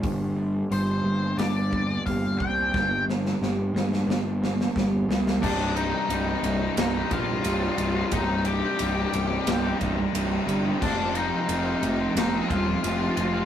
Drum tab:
CC |----------------|----------------|x---------------|----------------|
RD |----------------|----------------|--x-x-x-x-x-x-x-|x-x-x-x-x-x-x-x-|
HH |o---o---o---o---|----------------|----------------|----------------|
SD |--------o-------|o-ooo-ooo-ooo-oo|--------o-------|--------o-------|
BD |o---------o-o-o-|o-----------o---|o---------o-----|o---------o-----|

CC |x---------------|
RD |--x-x-x-x-x-x-x-|
HH |----------------|
SD |--------o-------|
BD |o---------o-----|